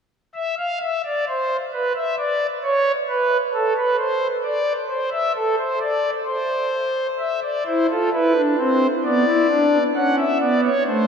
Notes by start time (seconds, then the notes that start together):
0.35 E5
0.59 F5
0.83 E5
1.05 D5
1.29 C5
1.73 B4
1.96 E5
2.19 D5
2.64 C#5
3.09 B4
3.54 A4
3.77 B4
3.99 C5
4.44 D5
4.89 C5
5.12 E5
5.35 A4
5.59 C5
5.81 D5
6.26 C5
7.20 E5
7.43 D5
7.66 E4 C5
7.90 F4 A4
8.13 E4 B4
8.36 D4
8.58 C4 C5
9.04 B3 D5
9.27 E4
9.50 D4
9.96 C#4 F#5
10.18 E5
10.40 B3 D5
10.64 C#5
10.86 A3 C5